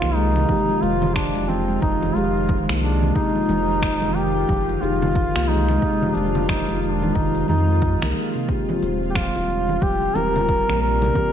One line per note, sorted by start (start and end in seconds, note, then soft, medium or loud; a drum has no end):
0.00 0.45 C2 loud
0.00 8.45 D#3 medium
0.00 0.45 G#3 medium
0.00 8.45 G#3 medium
0.00 0.14 A#3 medium
0.00 0.46 D#4 medium
0.00 0.16 F4 loud
0.00 11.32 F4 medium
0.00 0.47 G4 loud
0.00 finger snap medium
0.00 low conga medium
0.15 0.27 G#3 medium
0.15 0.83 D#4 loud
0.15 cabasa medium
0.35 0.67 C3 medium
0.35 muted conga medium
0.35 high conga medium
0.35 cabasa soft
0.48 2.13 D#3 medium
0.48 2.12 G#3 loud
0.48 2.14 G4 loud
0.48 kick loud
0.48 low conga medium
0.48 cabasa soft
0.69 1.34 F3 loud
0.82 1.30 F1 loud
0.82 1.16 F4 loud
0.82 high conga medium
0.82 cabasa medium
1.02 low conga medium
1.02 cabasa soft
1.15 1.50 D4 medium
1.15 finger snap medium
1.15 kick loud
1.15 cabasa soft
1.35 1.78 F1 medium
1.35 1.81 F3 medium
1.35 muted conga medium
1.48 1.81 C4 medium
1.48 low conga medium
1.48 cabasa medium
1.68 high conga medium
1.68 cabasa soft
1.82 2.11 F1 loud
1.82 2.14 F3 medium
1.82 2.17 D#4 loud
1.82 kick loud
1.82 cabasa soft
2.02 muted conga soft
2.02 high conga medium
2.02 low conga medium
2.14 2.63 F1 loud
2.14 2.67 F3 medium
2.14 3.12 G#3 medium
2.14 3.13 D#4 medium
2.14 2.56 F4 loud
2.14 high conga medium
2.14 cabasa medium
2.18 3.14 G4 medium
2.37 cabasa soft
2.49 kick loud
2.49 high conga soft
2.49 low conga medium
2.49 cabasa soft
2.69 3.12 C2 medium
2.69 2.81 A#3 medium
2.69 finger snap medium
2.69 muted conga medium
2.82 2.94 G#3 medium
2.82 3.17 D4 medium
2.82 cabasa medium
3.02 3.34 C3 medium
3.02 low conga medium
3.02 cabasa soft
3.14 4.78 G#3 medium
3.14 4.17 D#4 loud
3.14 4.79 D#4 medium
3.14 4.80 G4 medium
3.14 kick loud
3.14 cabasa soft
3.35 4.00 F3 loud
3.49 3.96 F1 medium
3.49 high conga medium
3.49 low conga medium
3.49 cabasa medium
3.70 cabasa soft
3.82 finger snap medium
3.82 kick loud
3.82 cabasa soft
4.02 4.45 F1 loud
4.02 4.48 F3 medium
4.02 muted conga soft
4.02 low conga medium
4.15 4.76 G4 loud
4.15 cabasa medium
4.37 cabasa soft
4.49 4.77 F1 loud
4.49 4.81 F3 medium
4.49 kick loud
4.49 low conga medium
4.49 cabasa soft
4.69 muted conga soft
4.76 4.83 G4 medium
4.81 5.30 F1 loud
4.81 5.34 F3 medium
4.81 5.78 G#3 medium
4.81 5.79 D#4 medium
4.81 5.50 F4 loud
4.81 5.80 G4 loud
4.81 muted conga soft
4.81 high conga medium
4.81 cabasa medium
5.02 low conga medium
5.02 cabasa soft
5.16 kick loud
5.16 cabasa soft
5.36 5.78 C2 loud
5.36 5.48 A#3 medium
5.36 finger snap medium
5.48 5.60 G#3 medium
5.48 6.16 D#4 loud
5.48 low conga medium
5.48 cabasa medium
5.68 6.00 C3 medium
5.68 muted conga medium
5.68 high conga medium
5.68 cabasa soft
5.81 7.46 D#3 medium
5.81 7.45 G#3 loud
5.81 kick loud
5.81 cabasa soft
5.85 7.47 G4 loud
6.02 6.67 F3 loud
6.02 low conga medium
6.15 6.63 F1 loud
6.15 6.50 D4 medium
6.15 high conga medium
6.15 cabasa medium
6.35 low conga medium
6.35 cabasa soft
6.49 6.81 D#4 medium
6.49 finger snap medium
6.49 kick loud
6.49 low conga medium
6.49 cabasa soft
6.69 7.12 F1 loud
6.69 7.14 F3 medium
6.69 muted conga medium
6.82 7.17 D4 medium
6.82 cabasa medium
7.02 high conga medium
7.02 low conga medium
7.02 cabasa soft
7.15 7.44 F1 loud
7.15 7.48 F3 medium
7.15 7.48 D#4 loud
7.15 kick loud
7.15 cabasa soft
7.35 muted conga soft
7.35 high conga medium
7.48 7.96 F2 medium
7.48 8.00 F3 medium
7.48 8.12 D#4 medium
7.48 high conga medium
7.48 low conga medium
7.48 cabasa medium
7.70 cabasa soft
7.82 kick loud
7.82 high conga soft
7.82 cabasa soft
8.01 8.13 C2 loud
8.01 8.45 G#3 medium
8.01 8.14 A#3 medium
8.01 8.46 D#4 medium
8.01 8.46 A#4 medium
8.01 finger snap medium
8.01 muted conga medium
8.01 low conga medium
8.15 8.27 G#3 medium
8.15 cabasa medium
8.35 8.49 C3 medium
8.35 cabasa soft
8.47 11.32 C3 medium
8.47 11.32 G3 medium
8.47 10.12 C4 medium
8.47 10.13 F4 medium
8.47 kick loud
8.47 cabasa soft
8.51 10.14 G4 medium
8.69 9.33 F3 loud
8.69 low conga medium
8.82 9.30 D#1 loud
8.82 high conga medium
8.82 cabasa medium
9.03 cabasa soft
9.10 9.17 G4 medium
9.15 9.84 F4 loud
9.15 finger snap medium
9.15 kick loud
9.15 low conga medium
9.15 cabasa soft
9.35 9.78 D#1 loud
9.35 9.81 F3 medium
9.35 muted conga soft
9.50 cabasa medium
9.69 low conga medium
9.69 cabasa soft
9.82 10.10 D#1 loud
9.82 10.14 F3 medium
9.82 10.18 G4 loud
9.82 kick loud
9.82 cabasa soft
10.02 muted conga soft
10.14 10.63 D#1 loud
10.14 10.67 F3 medium
10.14 11.12 C4 medium
10.14 11.13 F4 medium
10.14 11.14 G4 loud
10.14 10.81 A#4 loud
10.14 muted conga soft
10.14 high conga medium
10.14 low conga medium
10.14 cabasa medium
10.36 low conga loud
10.36 cabasa soft
10.49 kick loud
10.49 cabasa soft
10.69 11.12 A#1 loud
10.69 10.81 A#3 medium
10.69 finger snap medium
10.69 low conga medium
10.82 10.94 G3 medium
10.82 11.32 A#4 loud
10.82 cabasa medium
11.02 11.32 C3 medium
11.02 muted conga medium
11.02 high conga medium
11.02 cabasa soft
11.14 11.32 C4 loud
11.14 11.32 F4 medium
11.14 11.32 G4 loud
11.14 kick loud
11.14 low conga medium
11.14 cabasa soft